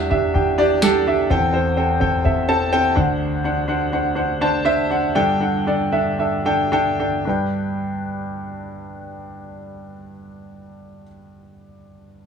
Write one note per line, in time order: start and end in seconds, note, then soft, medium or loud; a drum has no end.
0.00 1.26 E2 medium
0.00 1.26 E3 medium
0.00 0.10 D4 medium
0.00 0.10 G4 medium
0.00 0.11 E5 loud
0.10 0.32 D4 medium
0.10 0.33 G4 medium
0.10 0.33 E5 medium
0.10 kick medium
0.34 0.56 D4 medium
0.34 0.57 G4 medium
0.34 0.57 G5 medium
0.34 kick medium
0.58 0.80 D4 medium
0.58 0.81 G4 medium
0.58 0.81 D5 loud
0.82 1.04 D4 medium
0.82 1.05 G4 medium
0.82 1.05 A4 loud
0.82 snare medium
1.07 1.29 D4 medium
1.07 1.29 G4 medium
1.07 1.29 E5 medium
1.30 2.93 E2 medium
1.30 2.93 E3 medium
1.30 1.51 C4 medium
1.30 1.52 A4 medium
1.30 1.53 G5 loud
1.30 kick medium
1.53 1.75 C4 medium
1.53 1.76 A4 medium
1.53 1.76 C5 medium
1.77 1.99 C4 medium
1.77 1.99 A4 medium
1.77 1.99 G5 medium
2.00 2.23 C4 medium
2.00 2.23 A4 medium
2.00 2.23 G5 medium
2.00 kick medium
2.25 2.47 C4 medium
2.25 2.47 A4 medium
2.25 2.47 E5 medium
2.25 kick medium
2.48 2.71 C4 medium
2.48 2.71 A4 medium
2.48 2.71 A5 loud
2.73 2.95 C4 medium
2.73 2.95 A4 medium
2.73 2.95 G5 loud
2.95 4.86 D2 medium
2.95 4.85 D3 medium
2.95 3.40 D4 medium
2.95 3.40 C5 medium
2.95 3.41 F#5 medium
2.95 kick medium
3.44 3.66 D4 medium
3.44 3.67 C5 medium
3.44 3.67 F#5 medium
3.68 3.90 D4 medium
3.68 3.91 C5 medium
3.68 3.91 F#5 medium
3.93 4.14 D4 medium
3.93 4.14 C5 medium
3.93 4.15 F#5 medium
4.15 4.38 D4 medium
4.15 4.39 C5 medium
4.15 4.39 F#5 medium
4.41 4.63 D4 medium
4.41 4.64 C5 medium
4.41 4.64 A5 medium
4.65 4.88 D4 medium
4.65 4.88 C5 medium
4.65 4.88 E5 loud
4.90 5.13 D4 medium
4.90 5.13 C5 medium
4.90 5.14 F#5 medium
5.15 7.22 G1 medium
5.15 7.22 G2 medium
5.15 5.38 D4 medium
5.15 5.39 A4 medium
5.15 5.39 G5 loud
5.40 5.64 D4 medium
5.40 5.64 A4 medium
5.40 5.64 F#5 medium
5.67 5.90 D4 medium
5.67 5.90 A4 medium
5.67 5.90 D5 medium
5.92 6.16 D4 medium
5.92 6.16 A4 medium
5.92 6.16 E5 medium
6.19 6.43 D4 medium
6.19 6.43 A4 medium
6.19 6.43 E5 medium
6.45 6.70 D4 medium
6.45 6.70 A4 medium
6.45 6.70 G5 medium
6.72 6.97 D4 medium
6.72 6.97 A4 medium
6.72 6.97 G5 medium
7.00 7.24 D4 medium
7.00 7.25 A4 medium
7.00 7.25 G5 medium
7.25 11.04 G2 medium
7.25 11.01 D4 medium
7.25 11.04 B4 medium
7.25 11.05 G5 medium